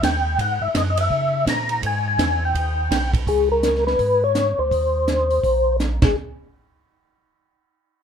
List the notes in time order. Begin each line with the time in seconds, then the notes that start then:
0.02 D#2 G5, kick, snare, hi-hat pedal, ride
0.39 G#2 F#5, kick, ride
0.61 G#2 E5
0.75 F#2 D#5, kick, snare, hi-hat pedal, ride
0.90 D#5
0.97 E5, ride
1.10 C#3, kick
1.46 A#2 A#5, kick, snare, hi-hat pedal, ride
1.69 ride
1.82 G#2, kick, ride
1.86 G#5
2.08 G#5
2.18 E2, kick, snare, hi-hat pedal, ride
2.45 G5
2.54 D#2, kick, ride
2.91 B1, kick, snare, hi-hat pedal, ride
3.14 kick, ride
3.27 C#2 G#4, kick, open hi-hat
3.52 A#4
3.63 snare, closed hi-hat
3.75 snare
3.87 B4, snare
3.99 G#2, kick, open hi-hat
4.24 C#5
4.35 snare, closed hi-hat
4.59 D2 C5
4.71 D#2, kick, open hi-hat
5.08 snare, closed hi-hat
5.30 open hi-hat
5.43 A#1, kick, open hi-hat
5.80 snare, closed hi-hat
6.02 G#1 G#4, kick, snare, crash